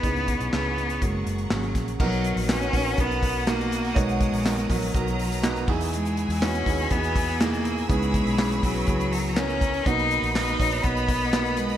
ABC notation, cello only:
X:1
M:4/4
L:1/16
Q:1/4=122
K:B
V:1 name="Cello"
B,4 B,4 G,4 F,3 z | F,4 C4 B,4 A,4 | G,6 F,8 z2 | G,4 C4 B,4 A,4 |
G,6 F,6 C4 | D4 D4 B,6 G,2 |]